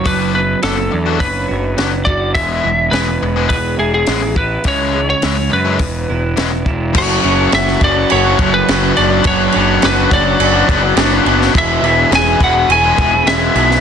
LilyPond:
<<
  \new Staff \with { instrumentName = "Lead electric guitar" } { \time 4/4 \key b \dorian \tempo 4 = 104 b'8 b'8 a'4 b'4. d''8 | e''4 b'4 b'8 gis'16 gis'8. b'8 | cis''8. cis''8. b'2 r8 | cis''4 e''8 d''8 cis''8. b'8. d''8 |
cis''4 b'8 d''2 r8 | e''4 gis''8 fis''8 gis''4 e''4 | }
  \new Staff \with { instrumentName = "Transistor combo organ" } { \time 4/4 \key b \dorian << { r1 | r1 | r1 | <fis'' cis'''>1~ |
<fis'' cis'''>1 | <e'' b''>1 | } \\ { r1 | r1 | r1 | <a' cis''>2.~ <a' cis''>8 <d' b'>8~ |
<d' b'>1 | gis'1 | } >> }
  \new Staff \with { instrumentName = "Clean electric guitar" } { \time 4/4 \key b \dorian fis8 b8 b8 d'8 cis''8 fis'8 d'8 fis'8 | e,8 e8 gis8 b8 gis'8 e'8 b8 e'8 | cis8 gis8 gis8 cis'8 e,8 e'8 b8 e'8 | fis8 cis'8 fis'8 a'8 fis'8 fis8 cis'8 fis8 |
fis8 d'8 fis'8 cis''8 fis'8 b8 d'8 b8 | e8 e'8 gis'8 b'8 gis'8 b8 e'8 b8 | }
  \new Staff \with { instrumentName = "Distorted electric guitar" } { \time 4/4 \key b \dorian <fis b d' fis'>16 <fis b d' fis'>16 r8 <fis b d' fis'>16 r8 <fis b d' fis'>16 r4 <fis b d' fis'>16 r8. | <e gis b gis'>16 <e gis b gis'>16 r8 <e gis b gis'>16 r8 <e gis b gis'>16 r4 <e gis b gis'>16 r8. | <e gis cis' e'>16 <e gis cis' e'>16 r8 <e gis cis' e'>16 r8 <e gis cis' e'>16 r4 <e gis b e'>16 r8. | <fis, cis fis a cis' fis'>8 <fis a cis' fis'>8 <fis, cis fis a cis' fis'>8 <fis a cis' fis'>8. <fis a cis' fis'>16 <fis a cis' fis'>8 <fis, cis fis a cis' fis'>8 <fis b d' fis'>16 <b d' fis'>16 |
<fis b d' fis'>8 <fis b d' fis'>8 <fis b d' fis'>8 <fis b d' fis'>8. <b d' fis'>16 <fis b d' fis'>8 <fis b d' fis'>8 <fis b d' fis'>16 <b d' fis'>16 | <e, b, e gis b gis'>8 <e gis b gis'>8 <e, b, e gis b gis'>8 <e gis b gis'>8. <e gis b gis'>16 <e gis b gis'>8 <e, b, e gis b gis'>8 <e gis b gis'>16 <e gis b gis'>16 | }
  \new Staff \with { instrumentName = "Picked electric bass" } { \clef bass \time 4/4 \key b \dorian fis,,4 fis,,8 e,8 fis,,8 fis,,8 fis,,8 fis,,8 | e,,8 e,,8 e,,8 e,,8 e,,8 e,,8 a,,4 | cis,4 cis,8 fis,8 e,,8 e,,8 e,,8 e,,8 | fis,,8 fis,,8 fis,,8 fis,,8 fis,,8 fis,,8 fis,,8 fis,,8 |
fis,,8 fis,,8 fis,,8 fis,,8 fis,,8 fis,,8 fis,,8 fis,,8 | e,,8 e,,8 e,,8 e,,8 e,,8 e,,8 e,,8 b,,8 | }
  \new DrumStaff \with { instrumentName = "Drums" } \drummode { \time 4/4 <hho bd>4 <hho sn>4 <hho bd>4 <hho sn>8 bd8 | <hho bd>4 <hho sn>4 <hho bd>4 <hho sn>8 bd8 | <hho bd>4 <hho sn>4 <hho bd>4 <hho sn>8 bd8 | <cymc bd>8 cymc8 <cymc sn>16 sn16 <cymc bd>8 cymc8 <cymc bd>8 <cymc sn>8 cymc8 |
<cymc bd>8 cymc8 <cymc sn>8 <cymc bd>8 cymc8 <cymc bd>8 <cymc sn>8 cymc16 sn16 | <cymc bd>8 cymc8 <cymc sn>8 <cymc bd>8 cymc8 <cymc bd>8 <cymc sn>8 cymc16 sn16 | }
>>